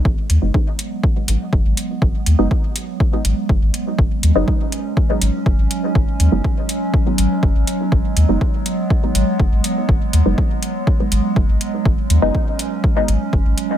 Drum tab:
HH |-x-x-x-x|-x-x-x-x|-x-x-x-x|-x-x-x-x|
BD |o-o-o-o-|o-o-o-o-|o-o-o-o-|o-o-o-o-|

HH |-x-x-x-x|-x-x-x-x|-x-x-x-x|
BD |o-o-o-o-|o-o-o-o-|o-o-o-o-|